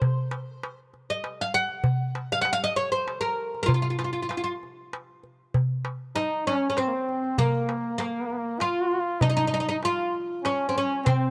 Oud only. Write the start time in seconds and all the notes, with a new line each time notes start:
Already playing: C5
1.10 D#5
1.41 F5
1.54 F#5
2.32 F5
2.41 F#5
2.53 F5
2.64 D#5
2.76 C#5
2.92 C5
3.21 A#4
3.63 F4 A#4
3.74 F4
3.82 F4
3.90 F4
3.99 F4
4.04 F4
4.13 F4
4.22 F4
4.29 F4
4.37 F4
4.44 F4
6.16 D#4
6.47 C#4
6.70 C#4
6.78 C4
7.39 A#3
7.98 A#3
8.61 F4
9.22 D#4
9.30 D#4
9.37 D#4
9.47 D#4
9.54 D#4
9.60 D#4
9.69 D#4
9.85 F4
10.45 C#4
10.69 C4
10.78 C#4
11.06 C4